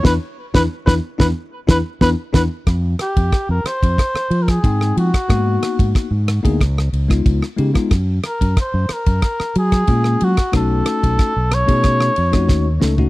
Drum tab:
RD |----------------|x-xxx-xxx-xxx-xx|x-xxx-xxx-xxx-xx|x-xxx-xxx-xxx-xx|
SD |o--o-o-o--o-o-o-|r-r-r-r-rr-r-r-r|r-r-r-r-rr-r-r-r|r-r-r-r-rr-r-r-r|
FT |----------------|----------------|----------------|----------------|
BD |o--o-o-o--o-o-o-|o--oo--oo--oo--o|o--oo--oo--oo--o|o--oo--oo--oo--o|

RD |x-xxx-xxx-xx----|
SD |r-r-r-r-rr-ro-o-|
FT |---------------o|
BD |o--oo--oo--oo---|